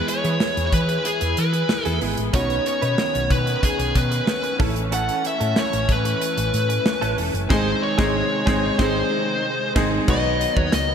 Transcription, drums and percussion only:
0.08 closed hi-hat medium
0.25 closed hi-hat soft
0.40 snare loud
0.57 closed hi-hat medium
0.73 kick medium
0.73 closed hi-hat medium
0.89 closed hi-hat medium
1.05 closed hi-hat medium
1.21 closed hi-hat medium
1.37 closed hi-hat medium
1.53 closed hi-hat medium
1.69 snare loud
1.85 closed hi-hat soft
2.01 open hi-hat medium
2.18 closed hi-hat medium
2.33 kick loud
2.33 closed hi-hat medium
2.50 closed hi-hat soft
2.66 closed hi-hat medium
2.82 closed hi-hat soft
2.98 snare loud
3.15 closed hi-hat medium
3.31 kick medium
3.31 closed hi-hat medium
3.47 closed hi-hat medium
3.63 kick medium
3.63 closed hi-hat medium
3.79 closed hi-hat medium
3.95 kick medium
3.95 closed hi-hat medium
4.12 closed hi-hat medium
4.27 snare loud
4.44 closed hi-hat medium
4.60 kick loud
4.60 open hi-hat medium
4.76 closed hi-hat medium
4.92 closed hi-hat medium
5.09 closed hi-hat medium
5.25 closed hi-hat medium
5.41 closed hi-hat medium
5.56 snare loud
5.73 closed hi-hat medium
5.89 kick medium
5.89 closed hi-hat medium
6.05 closed hi-hat medium
6.21 closed hi-hat medium
6.38 closed hi-hat medium
6.54 closed hi-hat medium
6.70 closed hi-hat medium
6.86 snare loud
7.02 closed hi-hat medium
7.18 open hi-hat medium
7.35 closed hi-hat medium
7.50 kick loud
7.50 snare loud
7.50 crash medium
7.99 kick loud
7.99 snare loud
8.47 kick loud
8.47 snare loud
8.79 kick loud
8.79 snare loud
9.76 kick loud
9.76 snare loud
9.76 crash medium
10.08 kick loud
10.08 crash loud
10.41 closed hi-hat medium
10.57 kick medium
10.72 snare loud
10.72 closed hi-hat medium
10.72 tambourine medium

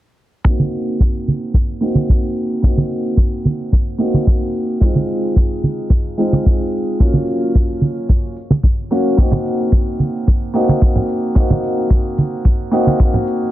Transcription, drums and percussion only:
0.45 kick loud
0.59 high conga medium
0.73 open hi-hat medium
1.00 kick loud
1.27 open hi-hat loud
1.27 high conga medium
1.54 kick loud
1.82 open hi-hat medium
1.95 high conga medium
2.09 kick loud
2.36 open hi-hat medium
2.63 kick loud
2.77 high conga medium
2.91 open hi-hat medium
3.17 kick loud
3.45 open hi-hat loud
3.45 high conga medium
3.73 kick loud
4.00 open hi-hat medium
4.14 high conga medium
4.27 kick loud
4.55 open hi-hat loud
4.81 kick loud
4.95 high conga medium
5.09 open hi-hat loud
5.36 kick loud
5.64 open hi-hat loud
5.64 high conga medium
5.90 kick loud
6.18 open hi-hat loud
6.33 high conga medium
6.46 kick loud
6.73 open hi-hat loud
7.00 kick loud
7.13 high conga medium
7.28 open hi-hat medium
7.55 kick loud
7.69 open hi-hat medium
7.81 open hi-hat loud
7.81 high conga medium
8.09 kick loud
8.37 open hi-hat loud
8.50 high conga medium
8.63 kick loud
8.91 open hi-hat loud
9.18 kick loud
9.31 high conga medium
9.31 low conga medium
9.46 open hi-hat medium
9.72 kick loud
10.00 open hi-hat medium
10.00 high conga medium
10.28 kick loud
10.55 open hi-hat medium
10.69 high conga medium
10.82 kick loud
10.96 low conga medium
11.09 open hi-hat medium
11.36 kick loud
11.50 high conga medium
11.50 low conga medium
11.64 open hi-hat medium
11.90 kick loud
12.18 open hi-hat medium
12.18 high conga medium
12.45 kick medium
12.73 open hi-hat medium
12.87 high conga medium
13.00 kick loud
13.14 low conga medium
13.27 open hi-hat medium

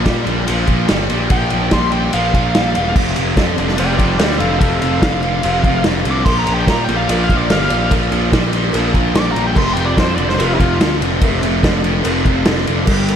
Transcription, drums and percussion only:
0.06 kick medium
0.06 snare loud
0.06 ride medium
0.27 ride medium
0.48 ride medium
0.67 kick medium
0.67 ride medium
0.88 snare loud
0.88 ride medium
1.10 ride medium
1.30 kick loud
1.30 ride medium
1.50 ride medium
1.71 kick medium
1.71 snare loud
1.71 ride medium
1.92 ride medium
2.13 ride loud
2.34 kick medium
2.34 ride medium
2.55 snare loud
2.55 ride medium
2.75 ride medium
2.96 kick loud
2.96 crash loud
3.16 ride medium
3.37 kick medium
3.37 snare loud
3.37 ride medium
3.58 ride medium
3.68 snare soft
3.78 ride loud
3.99 kick medium
3.99 ride medium
4.19 snare loud
4.19 ride loud
4.31 snare soft
4.40 ride medium
4.61 kick loud
4.61 ride loud
4.82 ride medium
5.02 kick medium
5.02 snare loud
5.02 ride medium
5.23 ride medium
5.43 ride medium
5.64 kick medium
5.64 ride medium
5.84 snare loud
5.84 ride medium
6.05 ride medium
6.26 kick loud
6.26 crash loud
6.26 cowbell loud
6.47 ride medium
6.67 kick medium
6.67 snare loud
6.67 ride loud
6.67 cowbell medium
6.89 ride medium
7.09 ride loud
7.09 cowbell medium
7.30 kick medium
7.30 ride medium
7.50 snare loud
7.50 ride loud
7.50 cowbell medium
7.61 snare soft
7.70 ride medium
7.91 kick loud
7.91 ride loud
7.91 cowbell medium
8.12 ride medium
8.32 kick medium
8.32 snare loud
8.32 ride medium
8.32 cowbell medium
8.53 ride medium
8.73 ride medium
8.73 cowbell medium
8.94 kick medium
8.94 ride medium
9.14 snare loud
9.14 ride medium
9.14 cowbell medium
9.36 ride medium
9.55 kick loud
9.55 cowbell medium
9.55 crash loud
9.77 ride medium
9.97 kick medium
9.97 snare loud
9.97 ride medium
9.97 cowbell medium
10.18 ride medium
10.29 snare soft
10.39 ride loud
10.39 cowbell loud
10.60 kick medium
10.60 ride medium
10.80 snare loud
10.80 ride loud
10.80 cowbell medium
11.02 ride medium
11.21 kick loud
11.21 ride loud
11.21 cowbell medium
11.43 ride medium
11.63 kick medium
11.63 snare loud
11.63 ride medium
11.63 cowbell medium
11.84 ride medium
12.04 ride medium
12.04 cowbell loud
12.25 kick medium
12.25 ride medium
12.45 snare loud
12.45 ride medium
12.45 cowbell medium
12.57 snare soft
12.67 ride medium
12.86 kick loud
12.86 crash loud
12.86 cowbell medium
13.07 ride medium
13.07 cowbell medium

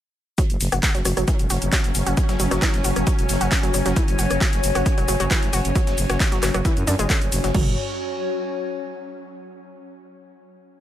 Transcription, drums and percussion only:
0.38 kick loud
0.38 closed hi-hat medium
0.38 shaker soft
0.50 closed hi-hat medium
0.50 shaker soft
0.61 closed hi-hat medium
0.61 open hi-hat loud
0.61 shaker medium
0.72 cross-stick medium
0.72 closed hi-hat medium
0.72 shaker soft
0.83 kick loud
0.83 snare loud
0.83 clap loud
0.83 closed hi-hat medium
0.83 shaker soft
0.95 closed hi-hat soft
0.95 closed hi-hat medium
0.95 shaker soft
1.05 cross-stick medium
1.05 closed hi-hat medium
1.05 open hi-hat loud
1.05 shaker medium
1.17 cross-stick medium
1.17 closed hi-hat medium
1.17 shaker soft
1.28 kick loud
1.28 closed hi-hat medium
1.28 shaker soft
1.39 closed hi-hat medium
1.39 shaker soft
1.50 closed hi-hat medium
1.50 open hi-hat loud
1.50 shaker medium
1.62 closed hi-hat medium
1.62 shaker soft
1.72 kick loud
1.72 snare loud
1.72 clap loud
1.72 closed hi-hat medium
1.72 shaker soft
1.84 closed hi-hat medium
1.84 shaker soft
1.95 closed hi-hat medium
1.95 open hi-hat loud
1.95 shaker medium
2.07 closed hi-hat medium
2.07 shaker soft
2.17 kick loud
2.17 closed hi-hat medium
2.17 shaker soft
2.29 snare medium
2.29 closed hi-hat medium
2.29 shaker soft
2.40 closed hi-hat medium
2.40 open hi-hat loud
2.40 shaker medium
2.51 cross-stick medium
2.51 snare soft
2.51 closed hi-hat medium
2.51 shaker soft
2.62 kick loud
2.62 snare loud
2.62 clap loud
2.62 closed hi-hat medium
2.62 shaker soft
2.74 snare soft
2.74 closed hi-hat medium
2.74 shaker soft
2.84 closed hi-hat medium
2.84 open hi-hat loud
2.84 shaker medium
2.96 cross-stick medium
2.96 closed hi-hat medium
2.96 shaker soft
3.07 kick loud
3.07 closed hi-hat medium
3.07 shaker soft
3.19 closed hi-hat medium
3.19 shaker soft
3.29 snare soft
3.29 closed hi-hat medium
3.29 open hi-hat loud
3.29 shaker medium
3.41 closed hi-hat medium
3.41 shaker soft
3.51 kick loud
3.51 snare loud
3.51 clap loud
3.51 closed hi-hat medium
3.51 shaker soft
3.63 closed hi-hat medium
3.63 shaker soft
3.74 closed hi-hat medium
3.74 open hi-hat loud
3.74 shaker medium
3.86 snare soft
3.86 closed hi-hat medium
3.86 shaker soft
3.96 kick loud
3.96 closed hi-hat medium
3.96 shaker soft
4.08 closed hi-hat medium
4.08 shaker soft
4.19 closed hi-hat medium
4.19 open hi-hat loud
4.19 shaker medium
4.31 cross-stick medium
4.31 closed hi-hat medium
4.31 shaker soft
4.41 kick loud
4.41 snare loud
4.41 clap loud
4.41 closed hi-hat medium
4.41 shaker soft
4.53 closed hi-hat soft
4.53 closed hi-hat medium
4.53 shaker soft
4.64 closed hi-hat medium
4.64 open hi-hat loud
4.64 shaker medium
4.75 cross-stick medium
4.75 closed hi-hat medium
4.75 shaker soft
4.86 kick loud
4.86 closed hi-hat medium
4.86 shaker soft
4.98 closed hi-hat medium
4.98 shaker soft
5.08 closed hi-hat medium
5.08 open hi-hat loud
5.08 shaker medium
5.20 closed hi-hat medium
5.20 shaker soft
5.31 kick loud
5.31 snare loud
5.31 clap loud
5.31 closed hi-hat medium
5.31 shaker soft
5.43 closed hi-hat medium
5.43 shaker soft
5.53 closed hi-hat medium
5.53 open hi-hat loud
5.53 shaker medium
5.65 closed hi-hat medium
5.65 shaker soft
5.75 kick loud
5.75 closed hi-hat medium
5.75 shaker soft
5.87 snare medium
5.87 closed hi-hat medium
5.87 shaker soft
5.98 closed hi-hat medium
5.98 open hi-hat loud
5.98 shaker medium
6.09 cross-stick loud
6.09 snare soft
6.09 closed hi-hat medium
6.09 shaker soft
6.20 kick loud
6.20 snare loud
6.20 clap loud
6.20 closed hi-hat medium
6.20 shaker soft
6.32 snare soft
6.32 closed hi-hat medium
6.32 shaker soft
6.43 cross-stick loud
6.43 clap medium
6.43 closed hi-hat medium
6.43 open hi-hat loud
6.43 shaker medium
6.54 cross-stick loud
6.54 closed hi-hat medium
6.54 shaker soft
6.65 kick loud
6.65 closed hi-hat medium
6.65 shaker soft
6.77 closed hi-hat medium
6.77 shaker soft
6.87 closed hi-hat medium
6.87 open hi-hat loud
6.87 shaker medium
6.99 closed hi-hat medium
6.99 shaker soft
7.10 kick loud
7.10 clap loud
7.10 closed hi-hat medium
7.10 shaker soft
7.22 closed hi-hat medium
7.22 shaker soft
7.32 closed hi-hat medium
7.32 open hi-hat loud
7.32 shaker medium
7.44 snare soft
7.44 closed hi-hat medium
7.44 shaker soft
7.54 kick loud
7.54 floor tom loud
7.54 crash medium

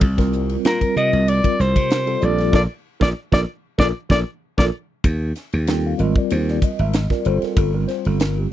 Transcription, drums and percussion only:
0.01 kick loud
0.01 ride medium
0.18 kick medium
0.18 snare soft
0.18 ride medium
0.33 hi-hat pedal medium
0.49 ride medium
0.65 snare loud
0.65 ride medium
0.81 kick medium
0.81 ride medium
0.96 hi-hat pedal medium
1.13 ride medium
1.28 ride medium
1.44 kick medium
1.44 ride medium
1.60 snare soft
1.60 hi-hat pedal medium
1.76 kick medium
1.76 ride medium
1.90 snare loud
1.90 ride medium
2.07 ride medium
2.21 hi-hat pedal medium
2.38 snare soft
2.38 ride medium
2.53 kick medium
2.53 snare medium
3.01 kick medium
3.01 snare medium
3.32 kick medium
3.32 snare medium
3.79 kick medium
3.79 snare loud
4.10 kick medium
4.10 snare medium
4.58 kick medium
4.58 snare medium
5.04 kick loud
5.04 hi-hat pedal medium
5.04 ride medium
5.36 snare soft
5.36 hi-hat pedal medium
5.36 ride medium
5.53 ride medium
5.67 snare medium
5.67 hi-hat pedal medium
5.67 ride medium
5.99 hi-hat pedal medium
5.99 ride medium
6.16 kick medium
6.30 hi-hat pedal medium
6.30 ride medium
6.48 snare soft
6.62 kick medium
6.62 hi-hat pedal medium
6.62 ride medium
6.79 ride medium
6.93 snare medium
6.93 hi-hat pedal medium
6.93 ride medium
7.10 kick medium
7.10 snare soft
7.25 hi-hat pedal medium
7.25 ride medium
7.42 snare soft
7.42 ride medium
7.56 kick loud
7.56 hi-hat pedal medium
7.56 ride medium
7.88 snare soft
7.88 hi-hat pedal medium
7.88 ride medium
8.05 ride medium
8.20 snare loud
8.20 hi-hat pedal medium
8.20 ride medium

